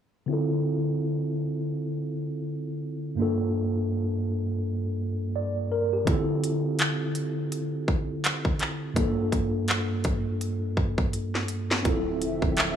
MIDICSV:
0, 0, Header, 1, 5, 480
1, 0, Start_track
1, 0, Key_signature, -1, "minor"
1, 0, Tempo, 722892
1, 191, Time_signature, 4, 2, 24, 8
1, 8473, End_track
2, 0, Start_track
2, 0, Title_t, "Tine electric piano"
2, 0, Program_c, 0, 4
2, 174, Note_on_c, 0, 50, 68
2, 185, Note_on_c, 0, 60, 62
2, 195, Note_on_c, 0, 64, 62
2, 207, Note_on_c, 0, 65, 63
2, 218, Note_on_c, 0, 69, 77
2, 327, Control_c, 0, 64, 127
2, 2076, Note_off_c, 0, 50, 0
2, 2081, Note_off_c, 0, 60, 0
2, 2086, Note_off_c, 0, 64, 0
2, 2092, Note_off_c, 0, 65, 0
2, 2095, Note_on_c, 0, 43, 67
2, 2097, Note_off_c, 0, 69, 0
2, 2106, Note_on_c, 0, 58, 63
2, 2116, Note_on_c, 0, 62, 62
2, 2119, Control_c, 0, 64, 0
2, 2127, Note_on_c, 0, 65, 64
2, 2138, Note_on_c, 0, 69, 77
2, 2240, Control_c, 0, 64, 127
2, 3537, Note_off_c, 0, 69, 0
2, 3557, Note_on_c, 0, 74, 58
2, 3782, Note_off_c, 0, 74, 0
2, 3796, Note_on_c, 0, 70, 68
2, 3925, Note_off_c, 0, 70, 0
2, 3938, Note_on_c, 0, 67, 61
2, 3996, Note_off_c, 0, 43, 0
2, 4002, Note_off_c, 0, 58, 0
2, 4007, Note_off_c, 0, 62, 0
2, 4012, Note_off_c, 0, 65, 0
2, 4017, Note_on_c, 0, 50, 67
2, 4027, Note_on_c, 0, 60, 64
2, 4038, Note_on_c, 0, 64, 64
2, 4039, Control_c, 0, 64, 0
2, 4048, Note_on_c, 0, 65, 65
2, 4059, Note_on_c, 0, 69, 80
2, 4162, Note_off_c, 0, 67, 0
2, 4166, Control_c, 0, 64, 127
2, 5917, Note_off_c, 0, 50, 0
2, 5922, Note_off_c, 0, 60, 0
2, 5927, Note_off_c, 0, 64, 0
2, 5933, Note_off_c, 0, 65, 0
2, 5935, Note_on_c, 0, 43, 68
2, 5938, Note_off_c, 0, 69, 0
2, 5945, Note_on_c, 0, 58, 65
2, 5956, Note_on_c, 0, 62, 69
2, 5957, Control_c, 0, 64, 0
2, 5966, Note_on_c, 0, 65, 68
2, 5977, Note_on_c, 0, 69, 80
2, 6078, Control_c, 0, 64, 127
2, 7836, Note_off_c, 0, 43, 0
2, 7841, Note_off_c, 0, 58, 0
2, 7847, Note_off_c, 0, 62, 0
2, 7852, Note_off_c, 0, 65, 0
2, 7854, Note_on_c, 0, 60, 72
2, 7857, Note_off_c, 0, 69, 0
2, 7868, Note_on_c, 0, 64, 68
2, 7880, Control_c, 0, 64, 0
2, 7883, Note_on_c, 0, 65, 67
2, 7897, Note_on_c, 0, 69, 80
2, 8009, Control_c, 0, 64, 127
2, 8473, Note_off_c, 0, 60, 0
2, 8473, Note_off_c, 0, 64, 0
2, 8473, Note_off_c, 0, 65, 0
2, 8473, Note_off_c, 0, 69, 0
2, 8473, End_track
3, 0, Start_track
3, 0, Title_t, "Analog synth pad"
3, 0, Program_c, 1, 89
3, 7869, Note_on_c, 1, 53, 82
3, 7871, Note_on_c, 1, 60, 70
3, 7871, Note_on_c, 1, 76, 71
3, 7872, Note_on_c, 1, 50, 79
3, 8473, Note_off_c, 1, 50, 0
3, 8473, Note_off_c, 1, 53, 0
3, 8473, Note_off_c, 1, 60, 0
3, 8473, Note_off_c, 1, 76, 0
3, 8473, End_track
4, 0, Start_track
4, 0, Title_t, "808-style bass"
4, 0, Program_c, 2, 38
4, 7870, Note_on_c, 2, 26, 100
4, 8109, Note_on_c, 2, 28, 93
4, 8119, Note_off_c, 2, 26, 0
4, 8242, Note_off_c, 2, 28, 0
4, 8248, Note_on_c, 2, 26, 93
4, 8473, Note_off_c, 2, 26, 0
4, 8473, End_track
5, 0, Start_track
5, 0, Title_t, "Drums"
5, 4031, Note_on_c, 9, 36, 108
5, 4032, Note_on_c, 9, 42, 59
5, 4098, Note_off_c, 9, 36, 0
5, 4098, Note_off_c, 9, 42, 0
5, 4274, Note_on_c, 9, 42, 67
5, 4340, Note_off_c, 9, 42, 0
5, 4507, Note_on_c, 9, 42, 62
5, 4518, Note_on_c, 9, 39, 98
5, 4573, Note_off_c, 9, 42, 0
5, 4584, Note_off_c, 9, 39, 0
5, 4748, Note_on_c, 9, 42, 63
5, 4814, Note_off_c, 9, 42, 0
5, 4994, Note_on_c, 9, 42, 74
5, 5060, Note_off_c, 9, 42, 0
5, 5232, Note_on_c, 9, 36, 88
5, 5299, Note_off_c, 9, 36, 0
5, 5474, Note_on_c, 9, 42, 58
5, 5479, Note_on_c, 9, 39, 99
5, 5540, Note_off_c, 9, 42, 0
5, 5545, Note_off_c, 9, 39, 0
5, 5610, Note_on_c, 9, 36, 89
5, 5677, Note_off_c, 9, 36, 0
5, 5707, Note_on_c, 9, 42, 64
5, 5720, Note_on_c, 9, 39, 58
5, 5773, Note_off_c, 9, 42, 0
5, 5786, Note_off_c, 9, 39, 0
5, 5951, Note_on_c, 9, 36, 108
5, 5952, Note_on_c, 9, 42, 61
5, 6018, Note_off_c, 9, 36, 0
5, 6018, Note_off_c, 9, 42, 0
5, 6191, Note_on_c, 9, 36, 68
5, 6193, Note_on_c, 9, 42, 65
5, 6257, Note_off_c, 9, 36, 0
5, 6259, Note_off_c, 9, 42, 0
5, 6426, Note_on_c, 9, 42, 63
5, 6438, Note_on_c, 9, 39, 99
5, 6493, Note_off_c, 9, 42, 0
5, 6504, Note_off_c, 9, 39, 0
5, 6667, Note_on_c, 9, 42, 61
5, 6672, Note_on_c, 9, 36, 85
5, 6733, Note_off_c, 9, 42, 0
5, 6738, Note_off_c, 9, 36, 0
5, 6913, Note_on_c, 9, 42, 70
5, 6979, Note_off_c, 9, 42, 0
5, 7152, Note_on_c, 9, 36, 84
5, 7218, Note_off_c, 9, 36, 0
5, 7290, Note_on_c, 9, 36, 88
5, 7357, Note_off_c, 9, 36, 0
5, 7393, Note_on_c, 9, 42, 57
5, 7459, Note_off_c, 9, 42, 0
5, 7536, Note_on_c, 9, 38, 53
5, 7603, Note_off_c, 9, 38, 0
5, 7625, Note_on_c, 9, 42, 61
5, 7692, Note_off_c, 9, 42, 0
5, 7776, Note_on_c, 9, 38, 82
5, 7842, Note_off_c, 9, 38, 0
5, 7869, Note_on_c, 9, 42, 59
5, 7870, Note_on_c, 9, 36, 107
5, 7935, Note_off_c, 9, 42, 0
5, 7936, Note_off_c, 9, 36, 0
5, 8111, Note_on_c, 9, 42, 65
5, 8178, Note_off_c, 9, 42, 0
5, 8248, Note_on_c, 9, 36, 88
5, 8314, Note_off_c, 9, 36, 0
5, 8344, Note_on_c, 9, 42, 64
5, 8356, Note_on_c, 9, 39, 102
5, 8411, Note_off_c, 9, 42, 0
5, 8422, Note_off_c, 9, 39, 0
5, 8473, End_track
0, 0, End_of_file